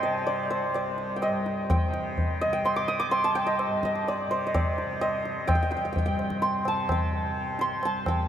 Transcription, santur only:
Already playing: C5 G5 A5 C6
0.03 D#5
0.27 D5
0.50 C5
0.75 D5
1.16 G5
1.23 D#5
1.70 G5
2.41 D#5
2.53 G5
2.65 C6
2.76 D6
2.88 D#6
3.00 D6
3.11 C6
3.24 A5
3.35 G5
3.47 D#5
3.85 D#5
4.08 D5
4.31 C5
4.47 D#5
4.54 D5
5.01 D#5
5.47 G5
5.55 G5
5.63 G5
5.71 G5
5.77 G5
5.85 G5
5.93 G5
5.98 G5
6.06 G5
6.42 C6
6.68 A5
6.92 G5
7.61 C6
7.85 A5
8.08 G5

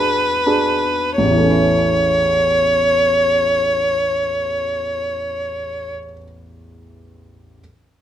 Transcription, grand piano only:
Already playing: D4 F#4 G#4
0.47 D4 F#4 G#4
1.18 A1
1.25 E2
1.31 E3
1.38 A3
1.44 C#4
1.50 E4

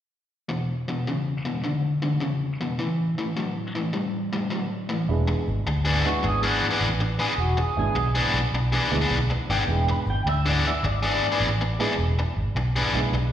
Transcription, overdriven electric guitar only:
0.49 E2 B2
0.88 E2 B2
1.07 E2 C#3
1.45 E2 B2
1.64 E2 D3
2.02 E2 D3
2.20 E2 C#3
2.61 E2 B2
2.79 A2 E3
3.18 A2 E3
3.37 A2 F#3
3.75 A2 E3
3.93 A2 G3
4.33 A2 G3
4.50 A2 F#3
4.89 A2 E3
5.27 muted overdriven electric guitar stroke
5.67 muted overdriven electric guitar stroke
5.85 E3 B3 D4 G#4
6.23 muted overdriven electric guitar stroke
6.43 E3 B3 D4 G#4
6.71 E3 B3 D4 G#4
7.00 muted overdriven electric guitar stroke
7.19 E3 B3 D4 G#4
7.57 muted overdriven electric guitar stroke
7.95 muted overdriven electric guitar stroke
8.15 E3 B3 D4 G#4
8.54 muted overdriven electric guitar stroke
8.72 E3 B3 D4 G#4
9.01 E3 B3 D4 G#4
9.30 muted overdriven electric guitar stroke
9.50 E3 B3 D4 G#4
9.88 muted overdriven electric guitar stroke
10.27 muted overdriven electric guitar stroke
10.46 E3 B3 D4 G#4
10.84 muted overdriven electric guitar stroke
11.03 E3 B3 D4 G#4
11.32 E3 B3 D4 G#4
11.61 muted overdriven electric guitar stroke
11.80 E3 B3 D4 G#4
12.19 muted overdriven electric guitar stroke
12.56 muted overdriven electric guitar stroke
12.76 E3 B3 D4 G#4
13.13 muted overdriven electric guitar stroke

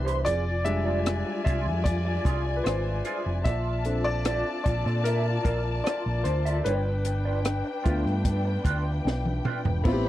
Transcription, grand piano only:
Already playing: E3 B3 D4 B4 C5
0.25 D5
0.65 G3 G#3 D4 E5
1.44 E5
1.84 D5
2.56 B4
2.64 C5
3.44 E5
3.85 C4 D4 A4
4.04 D5
4.64 D5
5.04 A#4
5.44 A#4
5.84 D5
6.24 C5
6.64 B4
7.84 A3 B3 F4
9.84 B3 C4 E4 F4
9.93 G4

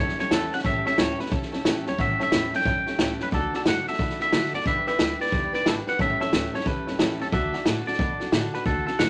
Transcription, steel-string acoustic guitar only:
Already playing: G3
0.00 C#4 G4 A4
0.19 G3 C#4 G4 A4
0.32 A2 E3 G3 C#4 G4 A4
0.53 G3 C#4 G4 A4
0.65 A2 E3 G3 C#4 G4 A4
0.86 G3 C#4 G4 A4
0.98 A2 E3 G3 C#4 G4 A4
1.19 G3 C#4 G4 A4
1.31 G3 C#4 G4 A4
1.53 G3 C#4 G4 A4
1.65 A2 E3 G3 C#4 G4 A4
1.86 G3 C#4 G4 A4
1.98 A2 E3 G3 C#4 G4 A4
2.19 G3 C#4 G4 A4
2.31 A2 E3 G3 C#4 G4 A4
2.53 G3 C#4 G4 A4
2.65 G3 C#4 G4 A4
2.86 G3 C#4 G4 A4
2.99 A2 E3 G3 C#4 G4 A4
3.20 G3 C#4 G4 A4
3.32 D3 A3 D4 F#4 A4
3.53 D4 F#4 A4
3.66 D3 A3 D4 F#4 A4
3.87 D4 F#4 A4
3.99 A3 D4 F#4 A4
4.20 D4 F#4 A4
4.32 D3 A3 D4 F#4 A4
4.53 D4 F#4 A4
4.65 G3 D4 G4 B4
4.87 D4 G4 B4
4.99 G3 D4 G4 B4
5.20 D4 G4 B4
5.32 G3 D4 G4 B4
5.53 D4 G4 B4
5.65 G3 D4 G4 B4
5.87 D4 G4 B4
5.99 A2 E3 G3 C#4 G4 A4
6.20 G3 C#4 G4 A4
6.33 A2 E3 G3 C#4 G4 A4
6.53 G3 C#4 G4 A4
6.66 G3 C#4 G4 A4
6.87 G3 C#4 G4 A4
6.99 A2 E3 G3 C#4 G4 A4
7.20 G3 C#4 G4 A4
7.32 D3 A3 D4 F#4 A4
7.52 D4 F#4 A4
7.65 D3 A3 D4 F#4 A4
7.86 D4 F#4 A4
7.98 A3 D4 F#4 A4
8.20 D4 F#4 A4
8.31 D3 A3 D4 F#4 A4
8.53 D4 F#4 A4
8.66 D3 A3 D4 F#4 A4
8.87 D4 F#4 A4
8.99 D3 A3 D4 F#4 A4

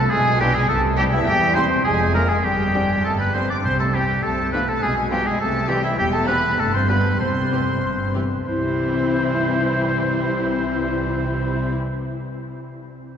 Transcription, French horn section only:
Already playing: A3
0.12 G#3
0.40 G3
0.55 G#3
0.70 A3
0.99 G3
1.13 E3
1.29 G3
1.57 C4
1.87 G#3
2.16 A#3
2.30 G#3
2.45 G3
3.06 A3
3.21 B3
3.36 C4
3.52 D4
3.66 C4
3.81 A3
3.95 G3
4.23 A3
4.53 B3
4.68 A3
4.82 G#3
5.12 G3
5.26 G#3
5.40 A3
5.68 G3
5.83 E3
5.98 G3
6.14 A3
6.27 B3
6.58 A3
6.73 C4
6.88 B3
7.19 C4
8.47 C4

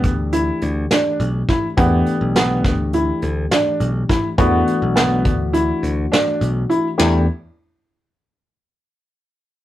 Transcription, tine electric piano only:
Already playing: E3 A3 D4 G4
1.77 E3 A3 D4 G4
4.38 E3 A3 D4 F#4
6.98 E3 A3 D4 G4

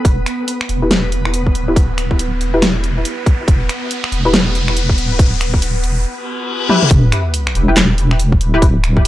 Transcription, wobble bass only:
0.05 E1
0.69 E1
1.55 D1
2.41 E1
3.48 E1
4.12 E1
4.98 D1
5.84 E1
6.91 E1
7.55 E1
8.41 D1

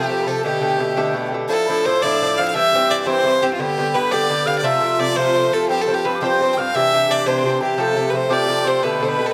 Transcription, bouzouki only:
Already playing: G4
0.09 C3 F3 A3 G4
0.26 C3 F3 A3 G4
0.44 B2 D3 A3 G4
0.61 B2 D3 A3 G4
0.78 B2 D3 A3 G4
0.96 B2 D3 A3 G4
1.13 B2 D3 A3 G4
1.32 B2 D3 A3 G4
1.48 A2 F3 D4 E4
1.68 A2 F3 D4 E4
1.85 A2 F3 D4 E4
2.03 A2 F3 D4 E4
2.21 A2 F3 D4 E4
2.38 A2 F3 D4 E4
2.54 G2 E3 C4 G4
2.73 G2 E3 C4 G4
2.90 G2 E3 C4 G4
3.06 G2 E3 C4 G4
3.23 G2 E3 C4 G4
3.42 G2 E3 C4 G4
3.59 G2 D3 B3 G4
3.77 G2 D3 B3 G4
3.94 G2 D3 B3 G4
4.11 G2 D3 B3 G4
4.28 G2 D3 B3 G4
4.45 G2 D3 B3 G4
4.63 C3 F3 A3 F4
4.81 C3 F3 A3 F4
4.99 C3 F3 A3 F4
5.16 C3 F3 A3 F4
5.35 C3 F3 A3 F4
5.51 C3 F3 A3 F4
5.69 G2 F3 C4 G4
5.87 G2 F3 C4 G4
6.04 G2 F3 C4 G4
6.21 G2 F3 C4 G4
6.40 G2 F3 C4 G4
6.57 G2 F3 C4 G4
6.75 C3 E3 D4 G4
6.92 C3 E3 D4 G4
7.09 C3 E3 D4 G4
7.26 C3 E3 D4 G4
7.43 C3 E3 D4 G4
7.61 C3 E3 D4 G4
7.78 C3 F3 A3 G4
7.95 C3 F3 A3 G4
8.12 C3 F3 A3 G4
8.29 C3 F3 A3 G4
8.47 C3 F3 A3 G4
8.64 C3 F3 A3 G4
8.82 B2 D3 A3 G4
9.00 B2 D3 A3 G4
9.17 B2 D3 A3 G4

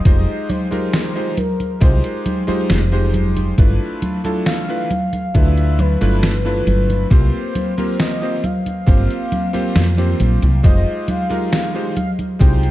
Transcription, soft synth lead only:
Already playing: D#5
0.49 C5
1.37 A#4
1.82 C5
4.46 F5
5.35 E5
5.79 B4
7.12 C5
8.01 D#5
8.44 F5
10.65 D#5
11.09 F5
11.97 F5
12.40 G5

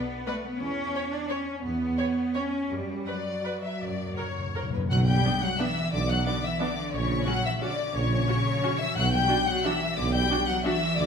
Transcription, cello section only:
Already playing: B3
0.27 A3
0.45 B3
0.61 C#4
1.12 D4
1.30 C#4
1.63 B3
2.35 C#4
2.71 G3
3.08 F#3
4.91 F#3
5.06 G3
5.42 F#3
5.59 E3
5.92 D3
6.09 F#3
6.26 D3
6.43 E3
6.61 D3
6.93 C#3
7.27 F#3
7.44 E3
7.61 D3
7.95 C#3
8.80 E3
8.96 F#3
9.13 G3
9.47 F#3
9.65 E3
9.98 D3
10.14 G3
10.48 F#3
10.65 E3
10.97 D3

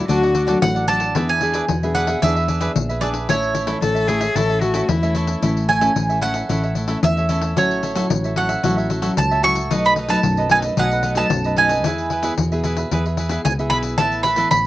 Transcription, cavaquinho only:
0.08 D4 A4 D5 F#5
0.23 A4 D5 F#5
0.35 D4 A4 D5 F#5
0.47 D4 A4 D5 F#5
0.75 A4 D5 F#5
0.88 D4 A4 D5 F#5
1.15 D4 G#4 B4 E5
1.42 D4 G#4 B4 E5
1.54 D4 G#4 B4 E5
1.83 G#4 B4 E5
1.95 D4 G#4 B4 E5
2.07 G#4 B4 E5
2.22 D4 G#4 B4 E5
2.36 G#4 B4 E5
2.48 D4 G#4 B4 E5
2.60 D4 G#4 B4 E5
2.89 G#4 B4 E5
3.01 D4 G#4 B4 E5
3.29 E4 A4 C#5 E5
3.54 E4 A4 C#5 E5
3.67 E4 A4 C#5 E5
3.95 A4 C#5 E5
4.07 E4 A4 C#5 E5
4.21 A4 C#5 E5
4.35 E4 A4 C#5 E5
4.49 A4 C#5 E5
4.62 E4 A4 C#5 E5
4.74 E4 A4 C#5 E5
5.03 A4 C#5 E5
5.15 E4 A4 C#5 E5
5.43 E4 A4 C#5 E5
5.69 E4 A4 C#5 E5
5.81 E4 A4 C#5 E5
6.09 A4 C#5 E5
6.21 E4 A4 C#5 E5
6.35 A4 C#5 E5
6.50 E4 A4 C#5 E5
6.64 A4 C#5 E5
6.76 E4 A4 C#5 E5
6.88 E4 A4 C#5 E5
7.17 A4 C#5 E5
7.29 E4 A4 C#5 E5
7.56 F#4 A4 C#5 E5
7.83 F#4 A4 C#5 E5
7.96 F#4 A4 C#5 E5
8.25 A4 C#5 E5
8.36 F#4 A4 C#5 E5
8.49 A4 C#5 E5
8.63 F#4 A4 C#5 E5
8.77 A4 C#5 E5
8.90 F#4 A4 C#5 E5
9.02 F#4 A4 C#5 E5
9.31 A4 C#5 E5
9.43 F#4 A4 C#5 E5
9.71 D#4 A4 B4 D#5
9.97 D#4 A4 B4 D#5
10.09 D#4 A4 B4 D#5
10.38 A4 B4 D#5
10.50 D#4 A4 B4 D#5
10.64 A4 B4 D#5
10.78 D#4 A4 B4 D#5
10.92 A4 B4 D#5
11.04 D#4 A4 B4 D#5
11.16 D#4 A4 B4 D#5
11.45 A4 B4 D#5
11.57 D#4 A4 B4 D#5
11.85 E4 G#4 B4 E5
12.11 E4 G#4 B4 E5
12.23 E4 G#4 B4 E5
12.52 G#4 B4 E5
12.64 E4 G#4 B4 E5
12.77 G#4 B4 E5
12.92 E4 G#4 B4 E5
13.06 B4 E5
13.18 E4 G#4 B4 E5
13.30 E4 G#4 B4 E5
13.59 G#4 B4 E5
13.72 E4 G#4 B4 E5
13.99 E4 A4 B4 E5
14.25 E4 A4 B4 E5
14.38 E4 A4 B4 E5

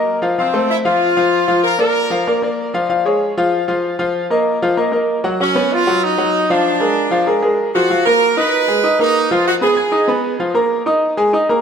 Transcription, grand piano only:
Already playing: A#3 A#4 D#5
0.22 F3 F4 F5
0.38 F3 F4 F5
0.54 A3 A4 C5
0.85 F3 F4 F5
1.17 F3 F4 F5
1.48 F3 F4 F5
1.78 A#3 A#4 D5
2.10 F3 F4 F5
2.27 A#3 A#4 D5
2.42 A#3 A#4 D5
2.74 F3 F4 F5
2.89 F3 F4 F5
3.05 G#3 G#4 C#5
3.37 F3 F4 F5
3.68 F3 F4 F5
3.99 F3 F4 F5
4.30 A#3 A#4 D#5
4.62 F3 F4 F5
4.77 A#3 A#4 D#5
4.92 A#3 A#4 D#5
5.24 F#3 F#4 F#5
5.40 F#3 F#4 F#5
5.55 B3 B4 C#5
5.87 F#3 F#4 F#5
6.18 F#3 F#4 F#5
6.50 F3 F4 F5
6.80 G#3 G#4 A#4
7.11 F3 F4 F5
7.27 G#3 G#4 A#4
7.43 G#3 G#4 A#4
7.75 F3 F4 F5
7.90 F3 F4 F5
8.07 A#3 A#4 A#5
8.37 D#4 D#5 D#6
8.68 G#3 G#4 G#5
8.84 D#4 D#5 D#6
8.99 A#3 A#4 A#5
9.31 F3 F4 F5
9.61 B3 B4 B5
9.76 G#4 G#5 G#6
9.92 D#4 D#5 D#6
10.08 B3 B4 B5
10.39 F3 F4 F5
10.54 A#3 A#4 A#5
10.86 D#4 D#5 D#6
11.17 G#3 G#4 G#5
11.33 D#4 D#5 D#6
11.49 A#3 A#4 A#5

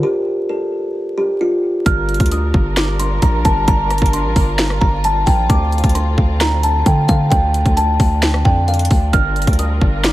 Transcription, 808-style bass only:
1.86 G1
2.20 D2
2.54 G1
3.22 A#1
3.45 G1
3.68 G1
4.02 G1
4.25 A1
4.36 G1
4.81 G1
5.27 A#1
5.50 D2
5.84 D2
6.18 D2
6.86 D3
7.09 D3
7.32 D2
7.66 D2
8.00 D2
8.45 F2
8.91 D2
9.13 G1
9.47 D2
9.81 G1

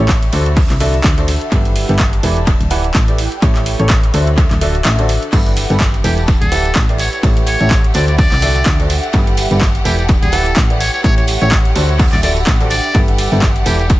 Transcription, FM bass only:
0.00 A1
0.33 D2
0.70 C2
1.04 D2
1.52 G1
1.89 G1
2.23 E1
2.61 D1
2.95 A1
3.42 A1
3.79 A1
4.14 D2
4.51 D1
4.85 A1
5.33 G1
5.70 G1
6.04 E1
6.42 D1
6.76 A1
7.23 A1
7.61 A1
7.95 D2
8.32 C2
8.66 D2
9.14 G1
9.51 G1
9.85 E1
10.22 D1
10.57 A1
11.04 A1
11.42 A1
11.76 D2
12.13 D1
12.47 A1
12.95 G1
13.32 G1
13.66 E1

